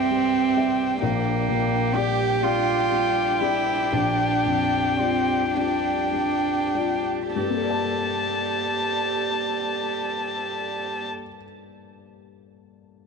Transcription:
Already playing: C2 G2 G3 C4 G4 E5 G5
0.11 G3
0.57 G3 G4 E5
1.01 A#1 A#3 D4 G4 D5 G5
1.49 A#2
1.95 G3 G4 D5
2.43 G3 F4 G4 D5
2.92 G3
3.41 G3 E4 G4 D5
3.93 A#1 D4
4.45 F2
4.99 G3 C4 F4 D5
5.54 G3 D4 F4 D5
6.13 G3
6.75 G3 F4 D5
7.36 G2 A#3 G4 A4 D5 A5
7.43 G3
7.50 A#3
7.57 A4
7.64 D5
7.70 A5

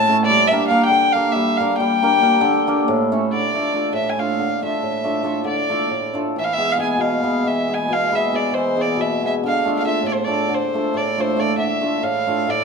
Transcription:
Already playing: A2 A5
0.08 A3 C#4 E4 A4
0.25 D5
0.29 G3
0.48 A#3 E5
0.52 D4 G4 A#4
0.68 A#3 D4 G4 F5
0.73 A#4
0.86 D3 G5
1.12 A#3 D4 G4 F5
1.17 A#4
1.32 G3 E5
1.57 A#3 D4 F5
1.61 G4 A#4
1.78 G3 G5
2.03 A#3 D4 G4 A#4
2.21 A#3 D4 G4 A#4
2.41 D3
2.67 A#3 D4 G4 A#4
2.88 A2
3.12 A3 C#4 E4 A4
3.32 D3 D5
3.54 A3 D4 F4 A4
3.73 A3 D4 F4 A4
3.93 A2 E5
4.09 G#5
4.18 A3 D4 F4 A4 F5
4.39 D3
4.62 A3 D4 F4 A4 E5
4.82 A2
5.04 A3 D4 F4 A4
5.23 A3 D4 F4 A4
5.44 D3 D5
5.69 A3 D4 F4 A4
5.90 A2
6.14 A3 D4 F4 A4
6.36 E3 E5
6.44 F5
6.54 G#3 B3 E5
6.59 E4 G#4
6.72 F5
6.77 G#3 B3 E4 G#4
6.82 G#5
6.91 G#5
6.97 B2 F5
7.23 G#3 B3 E4 G#4
7.45 E3 E5
7.68 G#3 B3 E4 G#4
7.74 G#5
7.89 B2
7.93 F5
8.12 G#3 B3 E4 G#4 E5
8.32 G#3 B3 E4 G#4 D5
8.51 E3 C5
8.76 G#3 B3 E4 G#4
8.81 D5
8.96 B2
9.01 E5
9.22 G#3 B3 E4 G#4
9.26 E5
9.43 D3 F5
9.65 A3 D4 F4 A4
9.79 F5
9.84 A3 D4 F4 A4 E5
10.03 A2
10.08 D5
10.13 C5
10.25 A3 D4 F4 A4 D5
10.49 D3
10.54 C5
10.74 A3 D4 F4 A4
10.94 A2 D5
11.17 A3 D4 F4 A4 C5
11.37 A3 D4 F4 A4 D5
11.57 D3 E5
11.81 A3 D4 F4 A4
12.02 A2 F5
12.27 A3 D4 F4 A4
12.47 A2 D5

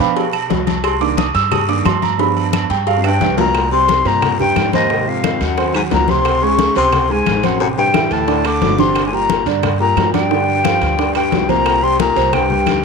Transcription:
0.00 B2 F3 B3 D4 B4 F5 G5 B5, cowbell
0.16 cowbell, high conga, low agogo, long guiro
0.33 high conga, low agogo, claves
0.50 C2, cowbell, high conga, low timbale, short guiro
0.67 cowbell, high conga, low agogo, short guiro
0.84 C6, cowbell, high conga, low agogo, long guiro, claves
1.00 D#3 A#3 D4 D6, cowbell, high conga
1.17 D#6, cowbell, high conga, low agogo, short guiro
1.34 G2 E6, cowbell, high conga, short guiro
1.51 D#6, cowbell, high conga, low conga, low agogo, long guiro, claves
1.68 D#3 A#3 D4 D6, cowbell, high conga
1.85 G2 C6, cowbell, high conga, low timbale, low agogo, short guiro, claves
2.02 A#5, high conga, low agogo, short guiro
2.18 F3 B3 D4 B5, cowbell, high conga, long guiro
2.36 high conga, low agogo
2.53 cowbell, high conga, low agogo, short guiro, claves
2.70 G2 G5, cowbell, short guiro
2.87 F5, cowbell, high conga, low agogo, long guiro
2.97 F2 F5
3.04 G2 G5, high conga, high timbale, low agogo, claves
3.21 C2, cowbell, high conga, high timbale, short guiro
3.37 A#2 A#5, cowbell, high conga, low timbale, low agogo, short guiro
3.55 high bongo, high conga, high timbale, long guiro, claves
3.72 C3 G3 G4 G5 C6, high conga
3.88 high bongo, high conga, high timbale, short guiro
4.05 G2 A#2 C3 C4 C5 A#5, high bongo, high conga, high timbale, short guiro
4.22 high bongo, high conga, low conga, high timbale, long guiro, claves
4.39 G2 G3 G4 G5, high bongo, high conga, low conga
4.56 G#2, high bongo, low bongo, high conga, high timbale, short guiro, claves
4.73 D#2 C4 C5 D#5 C6, high bongo, high conga, high timbale, short guiro
4.90 C3 C4 C5, high bongo, high conga, long guiro
5.07 F2 F5, high conga
5.24 D#3 D#4 D#5, high bongo, high conga, high timbale, short guiro, claves
5.41 D#2 F#2 F#5, high bongo, high conga, high timbale, short guiro
5.57 C4 C5 C6, high bongo, high conga, high timbale, long guiro
5.74 G#2 F#3 F#4 F#5 G#5, high bongo, high conga, high timbale, claves
5.91 C#2 A#2 A#5, high bongo, low bongo, high conga, high timbale, low timbale, short guiro
6.08 C3 C4 C5 C6, high bongo, high conga, short guiro
6.25 high bongo, high conga, high timbale, long guiro, claves
6.42 C#3 G#3 G#4 G#5 C#6, high conga
6.59 high bongo, high conga, high timbale, short guiro
6.76 C#2 C3 C4 C5 C6, high bongo, high conga, high timbale, short guiro
6.92 high bongo, high conga, low conga, high timbale, long guiro, claves
7.10 G#2 G#3 G#4 G#5, high bongo, high conga
7.26 A1, high bongo, low bongo, high conga, high timbale, short guiro, claves
7.43 F#2 C4 C5 F#5 C6, high bongo, high conga, high timbale, short guiro
7.60 F#2 C3 C4 C5 F#5, high bongo, high conga, long guiro
7.77 G2 G5, high conga
7.94 E3 E4 E5, high bongo, high conga, high timbale, short guiro, claves
8.11 D2 A2 A5, high bongo, high conga, high timbale, short guiro
8.27 D4 D5 D6, high bongo, high conga, high timbale, long guiro
8.45 D3 A3 A4 A5 D6, high bongo, high conga, high timbale, claves
8.62 G1, high bongo, low bongo, high conga, high timbale, low timbale, short guiro
8.78 C3 D3 D4 D5 C6, high bongo, high conga, short guiro
8.95 high bongo, high timbale, long guiro, claves
9.06 G#2 G#5
9.13 A#2 G3 G4 G5 A#5, high conga
9.29 high bongo, high conga, high timbale, short guiro
9.46 G2 D3 D4 D5, high bongo, high conga, high timbale, short guiro
9.63 high bongo, high conga, low conga, high timbale, long guiro, claves
9.80 A#2 G3 G4 G5 A#5, high bongo, high conga
9.97 G2, high bongo, low bongo, high conga, high timbale, low timbale, short guiro, claves
10.13 G2 D4 D5 G5 D6, high bongo, high conga, high timbale, short guiro
10.31 D3 D4 D5, high bongo, high conga, long guiro
10.48 high conga
10.64 F3 F4 F5, high bongo, high conga, high timbale, short guiro, claves
10.81 D2, high bongo, high conga, high timbale, short guiro
10.99 D4 D5 D6, high bongo, high conga, high timbale, long guiro
11.15 G2 G3 G4 G5, high bongo, high conga, high timbale, claves
11.32 C2, high bongo, low bongo, high conga, high timbale, low timbale, short guiro
11.49 A#2 C3 C4 C5 A#5, high bongo, high conga, short guiro
11.66 high bongo, high timbale, long guiro, claves
11.82 C3 G3 G4 G5 C6, high conga
11.99 A#2 A#5, high bongo, high conga, high timbale, short guiro
12.16 C2 C3 C4 C5, high bongo, high conga, high timbale, short guiro
12.33 G2 G5, high bongo, high conga, low conga, high timbale, long guiro, claves
12.50 G3 G4 G5, high bongo, high conga, low conga
12.66 D2, high bongo, low bongo, high conga, high timbale, short guiro, claves

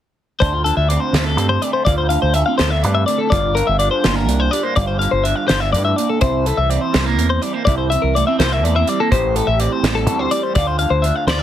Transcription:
0.40 D2 D4 C5, kick, closed hi-hat
0.53 F4
0.64 D3 A4, closed hi-hat
0.77 D2 E5
0.89 C4 D5, closed hi-hat
1.00 C5
1.13 D2 A3, snare, closed hi-hat
1.25 A4
1.37 G2 C4, closed hi-hat
1.49 C5
1.61 A3 D5, closed hi-hat
1.73 C5
1.85 D2 F4 D5, kick, closed hi-hat
1.98 C5
2.09 D3 F5, closed hi-hat
2.22 D2 C5
2.34 A3 E5, closed hi-hat
2.46 C4 F5
2.58 D2 A3 C5, snare, closed hi-hat
2.70 E5
2.83 G2 C4 D5, closed hi-hat
2.95 E5
3.06 A3 D5, closed hi-hat
3.18 A4
3.30 G1 G2 F4 D5, kick, closed hi-hat
3.55 D3 A#4, closed hi-hat
3.67 G1 E5
3.79 D4 D5, closed hi-hat
3.91 C5
4.03 G1 A#3, snare, closed hi-hat
4.16 A#4
4.28 C2 D4, closed hi-hat
4.40 C5
4.51 G3 D5, closed hi-hat
4.63 A#3 C5
4.76 G1 G2 F4 D5, kick, closed hi-hat
4.87 C5
4.99 D3 F5, closed hi-hat
5.11 G1 C5
5.24 D4 E5, closed hi-hat
5.36 F5
5.48 G1 G2 C5, snare, closed hi-hat
5.60 E5
5.73 G2 A2 D5, closed hi-hat
5.85 E5
5.96 A#2 D5, closed hi-hat
6.10 A4
6.21 C2 C3 E4 C5, kick, closed hi-hat
6.46 E3 A4, closed hi-hat
6.57 C2 E5
6.70 C4 D5, closed hi-hat
6.81 C5
6.92 C2 G3, snare, closed hi-hat
7.06 A#3 A#4
7.17 E2 C4, closed hi-hat
7.30 C5
7.42 G3 D5, closed hi-hat
7.53 A#3 C5
7.65 C2 C3 E4 D5, kick, closed hi-hat
7.78 C5
7.90 E3 E5, closed hi-hat
8.02 C2 A#4
8.15 A3 D5, closed hi-hat
8.27 C4 E5
8.39 C2 A#3 C5, snare, closed hi-hat
8.52 E5
8.63 E2 A3 D5, closed hi-hat
8.76 C4 E5
8.87 G3 D5, closed hi-hat
9.00 A#3 A4
9.12 A1 A2 G4 C5, kick, closed hi-hat
9.36 E3 A4, closed hi-hat
9.47 A1 E5
9.60 C4 D5, closed hi-hat
9.72 C5
9.83 A1 G3, snare, closed hi-hat
9.95 A4
10.06 D2 C4, closed hi-hat
10.19 C5
10.31 G3 D5, closed hi-hat
10.43 C5
10.55 D2 F4 D5, kick, closed hi-hat
10.67 C5
10.79 D3 F5, closed hi-hat
10.90 D2 C5
11.02 D4 E5, closed hi-hat
11.16 F5
11.27 D2 F2 C5 D5, snare, closed hi-hat
11.39 E5

